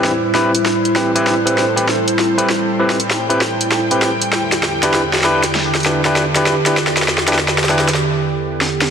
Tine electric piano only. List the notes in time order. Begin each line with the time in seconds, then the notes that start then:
Already playing: C4 E4 G4 B4
0.34 C4 E4 G4 B4
0.95 C4 E4 G4 B4
1.15 C4 E4 G4 B4
1.46 C4 E4 G4 B4
1.76 C4 E4 G4 B4
2.38 C4 E4 G4 B4
2.79 C4 E4 G4 B4
3.29 C4 E4 G4 B4
3.91 C4 E4 G4 B4
4.83 D4 E4 G4 B4
5.24 D4 E4 G4 B4
5.86 D4 E4 G4 B4
6.06 D4 E4 G4 B4
6.36 D4 E4 G4 B4
6.67 D4 E4 G4 B4
7.28 D4 E4 G4 B4
7.70 D4 E4 G4 B4